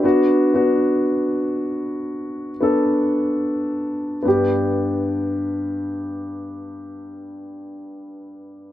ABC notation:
X:1
M:4/4
L:1/16
Q:1/4=53
K:G
V:1 name="Grand piano"
[B,DF]2 [B,DF]8 [B,DA]6 | [B,DG]16 |]
V:2 name="Grand piano"
B z12 z3 | G,,16 |]